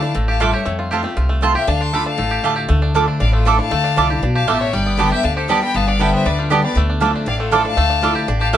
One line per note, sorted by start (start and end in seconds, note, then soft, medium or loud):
0.00 0.13 D3 medium
0.00 0.15 A3 medium
0.00 0.38 D4 medium
0.00 0.15 E4 medium
0.00 0.12 F5 loud
0.00 0.11 A5 loud
0.05 0.16 D4 soft
0.14 0.53 A1 medium
0.14 0.39 A2 medium
0.14 0.40 A3 medium
0.28 0.52 G4 medium
0.28 0.43 F5 medium
0.28 0.40 A5 medium
0.40 0.64 G2 medium
0.40 0.65 A3 medium
0.40 0.50 F4 medium
0.40 0.50 A4 loud
0.40 0.50 E5 loud
0.40 0.57 E5 medium
0.40 0.54 A5 medium
0.40 0.50 D6 loud
0.53 0.66 G4 medium
0.53 0.67 C#5 medium
0.53 0.66 E5 medium
0.65 1.14 F2 medium
0.65 1.03 F2 medium
0.65 1.04 A3 medium
0.79 1.16 F4 medium
0.91 1.03 F3 medium
0.91 1.04 A3 medium
0.91 1.01 C4 medium
0.91 1.04 C4 medium
0.91 1.01 F4 medium
0.91 1.27 G4 medium
0.91 1.01 C5 medium
0.91 1.01 A5 medium
1.03 1.29 A3 medium
1.03 1.17 C4 soft
1.03 1.16 F4 medium
1.17 1.54 C2 medium
1.17 1.65 C3 medium
1.17 1.42 F4 medium
1.29 1.93 A3 medium
1.41 1.54 F3 medium
1.41 1.54 A3 medium
1.41 1.51 C4 loud
1.41 1.55 C4 medium
1.41 1.68 F4 medium
1.41 1.52 F4 medium
1.41 1.53 F4 medium
1.41 1.52 C5 loud
1.41 1.52 A5 loud
1.54 1.68 C4 soft
1.54 1.67 F4 medium
1.54 1.68 G4 medium
1.54 1.71 E5 medium
1.54 1.70 G5 medium
1.67 2.05 D2 medium
1.67 1.91 D3 medium
1.67 1.79 D4 medium
1.67 1.83 F5 medium
1.67 1.83 A5 medium
1.81 2.05 D4 medium
1.81 1.96 A5 medium
1.81 1.95 C6 medium
1.92 2.17 D3 medium
1.92 2.02 A3 medium
1.92 2.17 A3 medium
1.92 2.18 A3 medium
1.92 2.18 D4 medium
1.92 2.03 F4 medium
1.92 2.18 F4 medium
1.92 2.03 D5 medium
1.92 2.03 A5 medium
1.92 2.06 B5 medium
1.92 2.05 D6 medium
2.06 2.42 D4 medium
2.06 2.60 F5 medium
2.06 2.59 A5 medium
2.18 2.37 A1 medium
2.18 2.67 A2 medium
2.18 2.42 A3 medium
2.31 2.55 G4 medium
2.43 2.67 D3 soft
2.43 2.67 A3 medium
2.43 2.68 A3 medium
2.43 2.53 A3 medium
2.43 2.68 D4 medium
2.43 2.53 F4 medium
2.43 2.69 F4 medium
2.43 2.54 D5 medium
2.43 2.54 A5 loud
2.56 2.69 G4 medium
2.68 3.07 D2 medium
2.68 3.17 D3 medium
2.68 2.94 A3 medium
2.82 3.07 D4 medium
2.94 3.19 F3 medium
2.94 3.33 A3 medium
2.94 3.19 A3 medium
2.94 3.20 D4 medium
2.94 3.20 E4 medium
2.94 3.04 F4 medium
2.94 3.04 A4 medium
2.94 3.05 E5 medium
2.94 3.05 D6 loud
3.08 3.20 D4 medium
3.20 3.58 A1 medium
3.20 3.69 A2 medium
3.20 3.46 D4 medium
3.20 3.33 D5 medium
3.20 3.32 F5 medium
3.33 3.71 A3 medium
3.33 3.47 F4 medium
3.33 3.49 A4 medium
3.45 3.58 F3 medium
3.45 3.58 A3 medium
3.45 3.59 D4 medium
3.45 3.57 E4 loud
3.45 3.55 F4 medium
3.45 3.59 A4 medium
3.45 3.55 A4 loud
3.45 3.59 D5 medium
3.45 3.56 E5 loud
3.45 3.56 D6 loud
3.58 3.84 D4 medium
3.58 3.72 D4 soft
3.58 3.71 E4 medium
3.58 4.19 F5 loud
3.58 4.19 A5 medium
3.71 3.90 D2 medium
3.71 4.20 D3 medium
3.71 4.13 A3 medium
3.84 3.97 D4 medium
3.96 4.19 C2 medium
3.96 4.09 F3 medium
3.96 4.09 A3 medium
3.96 4.23 D4 medium
3.96 4.10 D4 loud
3.96 4.09 E4 medium
3.96 4.06 F4 medium
3.96 4.06 A4 medium
3.96 4.06 E5 medium
3.96 4.07 D6 loud
4.10 4.23 D4 soft
4.10 4.22 E4 medium
4.10 4.34 G4 medium
4.22 4.44 B1 medium
4.22 4.47 B2 medium
4.22 4.61 D4 medium
4.35 4.71 G4 medium
4.35 4.49 F5 medium
4.35 4.48 A5 medium
4.47 4.69 A1 medium
4.47 4.72 A2 medium
4.47 4.73 A3 medium
4.47 4.57 F4 loud
4.47 4.57 A4 loud
4.47 4.62 E5 medium
4.47 4.57 E5 loud
4.47 4.61 A5 medium
4.47 4.57 D6 loud
4.60 4.98 D4 medium
4.60 4.75 C#5 medium
4.60 4.75 E5 medium
4.73 5.11 G1 medium
4.73 5.22 G2 medium
4.73 5.09 G3 medium
4.73 5.00 D5 medium
4.73 5.00 G5 medium
4.86 5.22 B3 medium
4.97 5.10 D3 medium
4.97 5.11 G3 medium
4.97 5.08 B3 medium
4.97 5.11 B3 medium
4.97 5.23 D4 medium
4.97 5.08 G4 medium
4.97 5.10 G4 medium
4.97 5.08 D5 medium
4.97 5.11 G5 loud
4.97 5.08 A5 medium
4.97 5.11 B5 medium
5.11 5.25 B3 soft
5.11 5.23 G4 medium
5.11 5.36 G4 medium
5.11 5.25 E5 loud
5.11 5.26 G5 medium
5.23 5.61 D2 medium
5.23 5.47 D3 medium
5.23 5.62 D4 medium
5.23 5.36 F5 medium
5.23 5.36 A5 medium
5.36 5.72 G4 medium
5.36 5.51 A4 soft
5.36 5.51 C5 soft
5.48 5.61 D3 medium
5.48 5.61 G3 loud
5.48 5.85 G3 medium
5.48 5.58 B3 loud
5.48 5.62 B3 medium
5.48 5.59 G4 medium
5.48 5.60 G4 medium
5.48 5.62 D5 medium
5.48 5.59 D5 medium
5.48 5.61 G5 medium
5.48 5.59 A5 loud
5.61 5.75 B3 medium
5.61 5.87 D4 medium
5.61 5.74 G4 medium
5.61 5.77 G5 loud
5.61 5.78 B5 medium
5.74 6.12 G1 medium
5.74 6.23 G2 medium
5.74 6.11 B3 medium
5.74 5.89 F5 medium
5.74 5.90 A5 medium
5.88 6.26 D4 medium
5.88 6.03 D5 medium
5.88 6.03 F5 medium
5.99 6.24 D3 medium
5.99 6.24 G3 medium
5.99 6.36 G3 medium
5.99 6.09 B3 medium
5.99 6.24 B3 medium
5.99 6.09 G4 medium
5.99 6.25 G4 medium
5.99 6.09 D5 medium
5.99 6.13 E5 medium
5.99 6.14 G5 medium
5.99 6.10 A5 medium
6.13 6.49 B3 medium
6.13 6.28 C5 medium
6.13 6.28 E5 medium
6.25 6.63 D2 medium
6.25 6.49 D3 medium
6.25 6.64 D4 medium
6.25 6.41 B4 medium
6.25 6.41 D5 medium
6.39 6.74 G3 medium
6.39 6.54 D4 medium
6.39 6.54 F4 medium
6.50 6.63 D3 medium
6.50 6.63 G3 medium
6.50 6.60 B3 loud
6.50 6.63 B3 medium
6.50 6.77 B3 medium
6.50 6.60 G4 medium
6.50 6.61 G4 medium
6.50 6.64 G4 medium
6.50 6.63 B4 medium
6.50 6.60 D5 loud
6.50 6.60 A5 medium
6.62 6.76 B3 soft
6.62 6.90 D4 medium
6.62 6.75 G4 medium
6.62 6.76 B4 medium
6.62 6.75 D5 medium
6.75 7.13 D2 loud
6.75 7.24 D3 medium
6.75 7.02 A3 medium
6.90 7.14 D4 medium
7.00 7.25 F3 medium
7.00 7.26 A3 medium
7.00 7.40 A3 medium
7.00 7.26 D4 medium
7.00 7.26 E4 medium
7.00 7.10 F4 medium
7.00 7.10 A4 medium
7.00 7.11 E5 medium
7.00 7.11 D6 medium
7.16 7.26 D4 medium
7.26 7.64 A1 medium
7.26 7.75 A2 medium
7.26 7.52 D4 medium
7.26 7.40 D5 medium
7.26 7.39 F5 medium
7.40 7.77 A3 medium
7.40 7.55 F4 medium
7.40 7.55 A4 medium
7.51 7.76 F3 medium
7.51 7.76 A3 medium
7.51 7.64 D4 medium
7.51 7.77 D4 medium
7.51 7.77 E4 medium
7.51 7.61 F4 loud
7.51 7.61 A4 loud
7.51 7.66 A4 medium
7.51 7.65 D5 medium
7.51 7.61 E5 medium
7.51 7.62 D6 loud
7.65 7.89 D4 medium
7.65 8.25 F5 medium
7.65 8.25 A5 medium
7.77 8.14 D2 medium
7.77 8.26 D3 medium
7.77 8.18 A3 medium
7.90 8.01 D4 medium
8.01 8.26 F3 medium
8.01 8.27 A3 medium
8.01 8.27 D4 medium
8.01 8.27 E4 medium
8.01 8.12 F4 medium
8.01 8.12 A4 medium
8.01 8.12 E5 medium
8.01 8.13 D6 medium
8.15 8.40 G4 medium
8.28 8.57 A1 medium
8.28 8.52 A2 medium
8.28 8.57 D4 medium
8.40 8.57 G4 medium
8.40 8.55 F5 medium
8.40 8.53 A5 medium
8.53 8.57 G2 medium
8.53 8.57 A3 medium
8.53 8.57 F4 medium
8.53 8.57 A4 loud
8.53 8.57 E5 medium
8.53 8.57 A5 medium